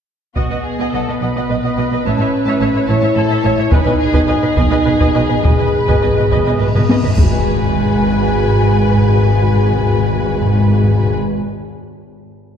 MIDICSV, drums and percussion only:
0, 0, Header, 1, 2, 480
1, 0, Start_track
1, 0, Tempo, 560748
1, 311, Time_signature, 6, 3, 24, 8
1, 3667, Tempo, 578035
1, 6067, Tempo, 562852
1, 10669, End_track
2, 0, Start_track
2, 0, Title_t, "Taiko and cinematic ensemble drums"
2, 307, Note_on_c, 9, 41, 44
2, 392, Note_off_c, 9, 41, 0
2, 3181, Note_on_c, 9, 41, 83
2, 3267, Note_off_c, 9, 41, 0
2, 3541, Note_on_c, 9, 41, 69
2, 3627, Note_off_c, 9, 41, 0
2, 3903, Note_on_c, 9, 41, 68
2, 3986, Note_off_c, 9, 41, 0
2, 4265, Note_on_c, 9, 41, 69
2, 4348, Note_off_c, 9, 41, 0
2, 4633, Note_on_c, 9, 41, 83
2, 4716, Note_off_c, 9, 41, 0
2, 4995, Note_on_c, 9, 41, 64
2, 5078, Note_off_c, 9, 41, 0
2, 5354, Note_on_c, 9, 41, 63
2, 5437, Note_off_c, 9, 41, 0
2, 5715, Note_on_c, 9, 45, 75
2, 5798, Note_off_c, 9, 45, 0
2, 5836, Note_on_c, 9, 48, 82
2, 5919, Note_off_c, 9, 48, 0
2, 5953, Note_on_c, 9, 43, 78
2, 6036, Note_off_c, 9, 43, 0
2, 6071, Note_on_c, 9, 41, 88
2, 6156, Note_off_c, 9, 41, 0
2, 10669, End_track
0, 0, End_of_file